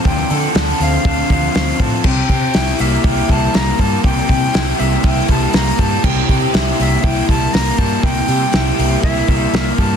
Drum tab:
CC |--------|x-------|--------|x-------|
HH |oooooooo|-ooooooo|oooooooo|-ooooooo|
SD |--o---o-|--o---o-|--o---o-|--o---o-|
BD |o---oo-o|oo--oo-o|oo--oo-o|oo--oo-o|

CC |--------|
HH |oooooooo|
SD |--o---o-|
BD |o---oo-o|